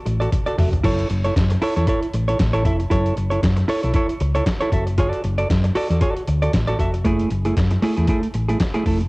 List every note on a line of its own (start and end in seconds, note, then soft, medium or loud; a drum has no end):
0.05 0.26 A1 medium
0.05 muted clean electric guitar stroke soft
0.05 closed hi-hat medium
0.20 0.31 F#4 medium
0.20 0.31 A4 medium
0.20 0.32 D5 medium
0.20 closed hi-hat soft
0.32 muted clean electric guitar stroke soft
0.32 kick loud
0.32 closed hi-hat loud
0.32 high tom medium
0.46 0.56 F#4 medium
0.46 0.58 A4 medium
0.46 0.59 D5 medium
0.46 closed hi-hat soft
0.58 0.77 F1 medium
0.58 0.73 F#4 medium
0.58 0.72 A4 medium
0.58 0.72 E5 medium
0.58 mid tom loud
0.58 open hi-hat medium
0.72 muted clean electric guitar stroke soft
0.72 closed hi-hat soft
0.72 floor tom medium
0.83 1.03 F#1 loud
0.83 1.08 E4 medium
0.83 1.08 A4 medium
0.83 1.09 C#5 medium
0.83 kick loud
0.83 crash medium
0.99 closed hi-hat soft
1.10 1.29 F#1 loud
1.10 muted clean electric guitar stroke soft
1.10 closed hi-hat medium
1.24 1.35 E4 soft
1.24 1.35 A4 medium
1.24 1.36 C#5 medium
1.24 closed hi-hat medium
1.36 1.55 F#2 loud
1.36 muted clean electric guitar stroke soft
1.36 kick loud
1.36 snare loud
1.36 closed hi-hat medium
1.50 muted clean electric guitar stroke soft
1.50 closed hi-hat medium
1.62 1.77 E4 medium
1.62 1.76 A4 medium
1.62 1.75 C#5 loud
1.62 open hi-hat medium
1.76 1.85 E2 medium
1.76 1.86 E4 medium
1.76 1.87 A4 medium
1.76 1.88 C#5 medium
1.76 snare soft
1.76 closed hi-hat medium
1.87 2.06 E4 medium
1.87 2.02 A4 medium
1.87 2.01 C#5 loud
1.87 kick loud
1.87 closed hi-hat medium
2.02 muted clean electric guitar stroke soft
2.02 closed hi-hat soft
2.14 2.33 A1 medium
2.14 muted clean electric guitar stroke soft
2.14 closed hi-hat medium
2.28 2.38 E4 medium
2.28 2.39 A4 medium
2.28 2.40 C#5 medium
2.28 closed hi-hat soft
2.39 2.67 A1 loud
2.39 kick loud
2.39 snare loud
2.39 closed hi-hat loud
2.53 2.64 E4 medium
2.53 2.65 A4 medium
2.53 2.66 C#5 medium
2.53 closed hi-hat soft
2.65 2.84 F1 medium
2.65 2.80 E4 medium
2.65 2.79 A4 medium
2.65 2.79 E5 medium
2.65 kick medium
2.65 closed hi-hat medium
2.80 muted clean electric guitar stroke medium
2.80 closed hi-hat soft
2.90 3.10 F#1 loud
2.90 3.15 E4 medium
2.90 3.15 A4 medium
2.90 3.16 C#5 loud
2.90 kick loud
2.90 closed hi-hat medium
3.06 closed hi-hat soft
3.16 3.36 F#1 loud
3.16 muted clean electric guitar stroke medium
3.16 closed hi-hat medium
3.30 3.41 E4 soft
3.30 3.42 A4 soft
3.30 3.42 C#5 medium
3.30 closed hi-hat medium
3.42 3.62 F#2 loud
3.42 muted clean electric guitar stroke soft
3.42 kick loud
3.42 snare loud
3.42 closed hi-hat medium
3.57 muted clean electric guitar stroke soft
3.57 closed hi-hat medium
3.68 3.83 E4 medium
3.68 3.83 A4 medium
3.68 3.82 C#5 loud
3.68 open hi-hat medium
3.83 3.92 B1 medium
3.83 3.93 E4 medium
3.83 3.94 A4 medium
3.83 3.95 C#5 medium
3.83 snare soft
3.83 closed hi-hat soft
3.94 4.13 E4 medium
3.94 4.09 A4 medium
3.94 4.08 C#5 loud
3.94 kick loud
3.94 closed hi-hat medium
4.09 muted clean electric guitar stroke soft
4.09 closed hi-hat soft
4.20 4.40 C#2 medium
4.20 muted clean electric guitar stroke medium
4.20 closed hi-hat medium
4.35 4.45 E4 medium
4.35 4.46 A4 medium
4.35 4.46 C#5 medium
4.35 closed hi-hat medium
4.46 kick loud
4.46 snare loud
4.46 closed hi-hat medium
4.61 4.72 E4 medium
4.61 4.72 A4 medium
4.61 4.73 C#5 medium
4.61 closed hi-hat soft
4.72 5.10 F#1 medium
4.72 4.87 F#4 medium
4.72 4.87 A4 medium
4.72 4.86 E5 medium
4.72 kick medium
4.72 closed hi-hat medium
4.87 muted clean electric guitar stroke medium
4.87 closed hi-hat soft
4.98 5.22 F#4 medium
4.98 5.23 A4 medium
4.98 5.23 D5 loud
4.98 kick loud
4.98 closed hi-hat medium
5.13 closed hi-hat soft
5.24 5.43 F#1 loud
5.24 muted clean electric guitar stroke soft
5.24 closed hi-hat medium
5.38 5.48 F#4 soft
5.38 5.49 A4 medium
5.38 5.49 D5 medium
5.38 closed hi-hat soft
5.49 5.69 F#2 loud
5.49 muted clean electric guitar stroke soft
5.49 kick loud
5.49 snare loud
5.49 closed hi-hat medium
5.64 muted clean electric guitar stroke soft
5.64 closed hi-hat medium
5.75 5.90 F#4 loud
5.75 5.89 A4 loud
5.75 5.88 D5 loud
5.75 open hi-hat medium
5.90 5.99 E2 loud
5.90 5.99 F#4 medium
5.90 6.01 A4 medium
5.90 6.01 D5 medium
5.90 snare soft
5.90 closed hi-hat medium
6.01 6.22 F#4 medium
6.01 6.16 A4 medium
6.01 6.15 D5 medium
6.01 kick loud
6.01 closed hi-hat medium
6.16 muted clean electric guitar stroke soft
6.16 closed hi-hat soft
6.27 6.47 D2 medium
6.27 muted clean electric guitar stroke medium
6.27 closed hi-hat medium
6.42 6.52 F#4 medium
6.42 6.53 A4 medium
6.42 6.54 D5 medium
6.42 closed hi-hat soft
6.53 6.73 A1 medium
6.53 muted clean electric guitar stroke soft
6.53 kick loud
6.53 snare loud
6.53 closed hi-hat medium
6.67 6.78 F#4 medium
6.67 6.78 A4 medium
6.67 6.80 D5 medium
6.67 closed hi-hat soft
6.79 7.05 F1 medium
6.79 6.94 F#4 medium
6.79 6.94 A4 medium
6.79 6.93 E5 medium
6.79 kick loud
6.79 closed hi-hat medium
6.94 muted clean electric guitar stroke soft
6.94 closed hi-hat soft
7.04 7.24 F#1 loud
7.04 7.29 A3 medium
7.04 7.29 E4 medium
7.04 7.30 G#4 loud
7.04 kick loud
7.04 closed hi-hat medium
7.19 closed hi-hat soft
7.30 7.50 F#1 loud
7.30 muted clean electric guitar stroke soft
7.30 closed hi-hat medium
7.45 7.56 A3 soft
7.45 7.56 E4 medium
7.45 7.57 G#4 medium
7.45 closed hi-hat medium
7.57 7.76 F#2 medium
7.57 muted clean electric guitar stroke medium
7.57 kick loud
7.57 snare loud
7.57 closed hi-hat medium
7.71 muted clean electric guitar stroke soft
7.71 closed hi-hat medium
7.82 7.97 A3 medium
7.82 7.96 E4 medium
7.82 7.95 G#4 medium
7.82 open hi-hat medium
7.96 8.06 E2 medium
7.96 8.07 A3 medium
7.96 8.08 E4 medium
7.96 8.08 G#4 medium
7.96 snare soft
7.96 closed hi-hat soft
8.07 8.27 A3 medium
8.07 8.23 E4 loud
8.07 8.21 G#4 medium
8.07 kick loud
8.07 closed hi-hat medium
8.23 muted clean electric guitar stroke medium
8.23 closed hi-hat soft
8.34 8.54 A1 medium
8.34 muted clean electric guitar stroke soft
8.34 closed hi-hat medium
8.49 8.59 A3 soft
8.49 8.60 E4 medium
8.49 8.60 G#4 medium
8.49 closed hi-hat medium
8.60 muted clean electric guitar stroke soft
8.60 kick loud
8.60 snare loud
8.60 closed hi-hat loud
8.74 8.84 A3 medium
8.74 8.85 E4 medium
8.74 8.87 G#4 medium
8.74 closed hi-hat soft
8.86 9.05 F1 medium
8.86 9.01 A3 medium
8.86 9.01 E4 medium
8.86 9.00 A4 medium
8.86 kick medium
8.86 open hi-hat medium
9.01 muted clean electric guitar stroke soft
9.01 closed hi-hat soft